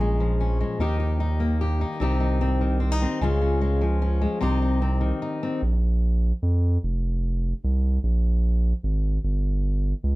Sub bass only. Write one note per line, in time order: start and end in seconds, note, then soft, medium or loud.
0.00 0.64 A#1 medium
0.79 1.85 D#2 medium
2.01 3.06 C2 loud
3.21 4.27 C#2 loud
4.42 5.12 C2 loud
5.62 6.33 A#1 loud
6.42 6.78 F2 loud
6.83 7.53 F1 loud
7.64 7.99 C2 loud
8.03 8.73 A#1 loud
8.83 9.19 G#1 loud
9.24 9.94 G1 loud
10.04 10.15 C#2 loud